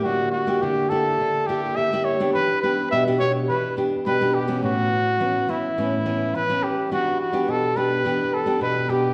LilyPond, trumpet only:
\new Staff \with { instrumentName = "Trumpet" } { \time 4/4 \key e \dorian \tempo 4 = 105 fis'8 fis'8 g'8 a'4 g'8 e''8 cis''8 | b'8 b'8 e''8 cis''8 b'8 r8 b'8 g'8 | fis'4. e'4. b'8 g'8 | fis'8 fis'8 a'8 b'4 a'8 b'8 g'8 | }